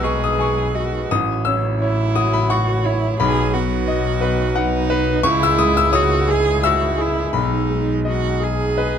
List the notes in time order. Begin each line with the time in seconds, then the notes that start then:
Already playing: B1 G#3 D#4 G#4 B4 D#6 E6
0.03 G#4 D#5 C#6
0.24 D#6
0.39 G#5 C#6
0.75 F#4 D#5
1.10 A1 F#3 E4 C#5 D#6
1.45 C#4 E6
1.81 E4 C#5
2.15 F#4 D#6
2.33 B5
2.50 F#4 F#5 C#6
2.84 E4 C#5
3.17 B1 D#4 G#4 B4 B5
3.54 B3 F#4
3.88 D#5
4.21 B4
4.56 D#4 F#5
4.90 B4
5.23 C#2 G#3 E4 G#4 C#6
5.43 E6
5.58 G#3 D#6
5.77 E6
5.92 F#4 C#5 D#6
6.28 G#4
6.63 F#4 E5 E6
6.98 E4 G#4
7.33 B1 D#4 B5
7.38 D#4
7.68 G#3
8.05 F#4 D#5
8.40 G#4
8.77 B4 D#5